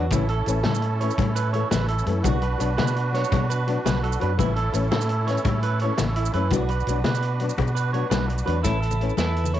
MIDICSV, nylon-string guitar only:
0, 0, Header, 1, 3, 480
1, 0, Start_track
1, 0, Key_signature, 3, "major"
1, 0, Tempo, 355661
1, 144, Time_signature, 12, 3, 24, 8
1, 12955, End_track
2, 0, Start_track
2, 0, Title_t, "Nylon-string guitar"
2, 0, Program_c, 0, 24
2, 160, Note_on_c, 0, 52, 77
2, 185, Note_on_c, 0, 57, 87
2, 188, Note_on_c, 0, 61, 78
2, 297, Note_off_c, 0, 52, 0
2, 309, Note_off_c, 0, 57, 0
2, 311, Note_off_c, 0, 61, 0
2, 626, Note_on_c, 0, 52, 75
2, 639, Note_on_c, 0, 57, 65
2, 656, Note_on_c, 0, 61, 77
2, 770, Note_off_c, 0, 52, 0
2, 777, Note_off_c, 0, 57, 0
2, 785, Note_off_c, 0, 61, 0
2, 1358, Note_on_c, 0, 52, 62
2, 1381, Note_on_c, 0, 57, 69
2, 1385, Note_on_c, 0, 61, 66
2, 1497, Note_off_c, 0, 52, 0
2, 1508, Note_off_c, 0, 57, 0
2, 1511, Note_off_c, 0, 61, 0
2, 2079, Note_on_c, 0, 52, 60
2, 2099, Note_on_c, 0, 57, 76
2, 2218, Note_off_c, 0, 52, 0
2, 2228, Note_off_c, 0, 57, 0
2, 2782, Note_on_c, 0, 52, 64
2, 2796, Note_on_c, 0, 57, 67
2, 2816, Note_on_c, 0, 61, 75
2, 2931, Note_off_c, 0, 52, 0
2, 2938, Note_off_c, 0, 57, 0
2, 2948, Note_off_c, 0, 61, 0
2, 3028, Note_on_c, 0, 54, 73
2, 3050, Note_on_c, 0, 59, 83
2, 3060, Note_on_c, 0, 62, 75
2, 3174, Note_off_c, 0, 54, 0
2, 3185, Note_off_c, 0, 59, 0
2, 3190, Note_off_c, 0, 62, 0
2, 3480, Note_on_c, 0, 54, 67
2, 3506, Note_on_c, 0, 59, 68
2, 3514, Note_on_c, 0, 62, 73
2, 3640, Note_off_c, 0, 54, 0
2, 3653, Note_off_c, 0, 59, 0
2, 3657, Note_off_c, 0, 62, 0
2, 4213, Note_on_c, 0, 54, 67
2, 4237, Note_on_c, 0, 59, 64
2, 4258, Note_on_c, 0, 62, 73
2, 4367, Note_off_c, 0, 54, 0
2, 4379, Note_off_c, 0, 59, 0
2, 4390, Note_off_c, 0, 62, 0
2, 4953, Note_on_c, 0, 54, 67
2, 4964, Note_on_c, 0, 59, 72
2, 4987, Note_on_c, 0, 62, 68
2, 5098, Note_off_c, 0, 54, 0
2, 5103, Note_off_c, 0, 59, 0
2, 5115, Note_off_c, 0, 62, 0
2, 5665, Note_on_c, 0, 54, 74
2, 5691, Note_on_c, 0, 59, 70
2, 5695, Note_on_c, 0, 62, 80
2, 5814, Note_off_c, 0, 54, 0
2, 5827, Note_off_c, 0, 59, 0
2, 5829, Note_off_c, 0, 62, 0
2, 5899, Note_on_c, 0, 52, 80
2, 5910, Note_on_c, 0, 57, 87
2, 6051, Note_off_c, 0, 52, 0
2, 6057, Note_off_c, 0, 57, 0
2, 6371, Note_on_c, 0, 52, 64
2, 6387, Note_on_c, 0, 57, 72
2, 6411, Note_on_c, 0, 61, 76
2, 6527, Note_off_c, 0, 52, 0
2, 6535, Note_off_c, 0, 57, 0
2, 6547, Note_off_c, 0, 61, 0
2, 7111, Note_on_c, 0, 52, 63
2, 7132, Note_on_c, 0, 57, 66
2, 7150, Note_on_c, 0, 61, 69
2, 7257, Note_off_c, 0, 52, 0
2, 7268, Note_off_c, 0, 57, 0
2, 7276, Note_off_c, 0, 61, 0
2, 7851, Note_on_c, 0, 52, 69
2, 7872, Note_on_c, 0, 57, 73
2, 7890, Note_on_c, 0, 61, 69
2, 7987, Note_off_c, 0, 52, 0
2, 7997, Note_off_c, 0, 57, 0
2, 8006, Note_off_c, 0, 61, 0
2, 8553, Note_on_c, 0, 52, 75
2, 8569, Note_on_c, 0, 57, 77
2, 8587, Note_on_c, 0, 61, 76
2, 8697, Note_off_c, 0, 52, 0
2, 8706, Note_off_c, 0, 57, 0
2, 8714, Note_off_c, 0, 61, 0
2, 8800, Note_on_c, 0, 54, 78
2, 8811, Note_on_c, 0, 59, 79
2, 8823, Note_on_c, 0, 62, 83
2, 8941, Note_off_c, 0, 54, 0
2, 8946, Note_off_c, 0, 59, 0
2, 8953, Note_off_c, 0, 62, 0
2, 9278, Note_on_c, 0, 54, 72
2, 9301, Note_on_c, 0, 59, 68
2, 9314, Note_on_c, 0, 62, 74
2, 9420, Note_off_c, 0, 54, 0
2, 9431, Note_off_c, 0, 59, 0
2, 9438, Note_off_c, 0, 62, 0
2, 9990, Note_on_c, 0, 54, 56
2, 10001, Note_on_c, 0, 59, 71
2, 10032, Note_on_c, 0, 62, 73
2, 10135, Note_off_c, 0, 54, 0
2, 10140, Note_off_c, 0, 59, 0
2, 10156, Note_off_c, 0, 62, 0
2, 10708, Note_on_c, 0, 54, 63
2, 10732, Note_on_c, 0, 59, 62
2, 10743, Note_on_c, 0, 62, 70
2, 10853, Note_off_c, 0, 54, 0
2, 10865, Note_off_c, 0, 59, 0
2, 10871, Note_off_c, 0, 62, 0
2, 11409, Note_on_c, 0, 54, 70
2, 11431, Note_on_c, 0, 59, 70
2, 11445, Note_on_c, 0, 62, 67
2, 11563, Note_off_c, 0, 54, 0
2, 11574, Note_off_c, 0, 59, 0
2, 11581, Note_off_c, 0, 62, 0
2, 11655, Note_on_c, 0, 52, 61
2, 11669, Note_on_c, 0, 57, 76
2, 11678, Note_on_c, 0, 61, 77
2, 11806, Note_off_c, 0, 52, 0
2, 11813, Note_off_c, 0, 57, 0
2, 11818, Note_off_c, 0, 61, 0
2, 12148, Note_on_c, 0, 52, 56
2, 12166, Note_on_c, 0, 57, 60
2, 12181, Note_on_c, 0, 61, 66
2, 12292, Note_off_c, 0, 52, 0
2, 12301, Note_off_c, 0, 57, 0
2, 12309, Note_off_c, 0, 61, 0
2, 12867, Note_on_c, 0, 52, 51
2, 12889, Note_on_c, 0, 57, 49
2, 12900, Note_on_c, 0, 61, 53
2, 12955, Note_off_c, 0, 52, 0
2, 12955, Note_off_c, 0, 57, 0
2, 12955, Note_off_c, 0, 61, 0
2, 12955, End_track
3, 0, Start_track
3, 0, Title_t, "Muted nylon-string guitar strokes"
3, 2112, Note_on_c, 9, 29, 62
3, 2247, Note_off_c, 9, 29, 0
3, 5929, Note_on_c, 9, 29, 84
3, 6064, Note_off_c, 9, 29, 0
3, 12955, End_track
0, 0, End_of_file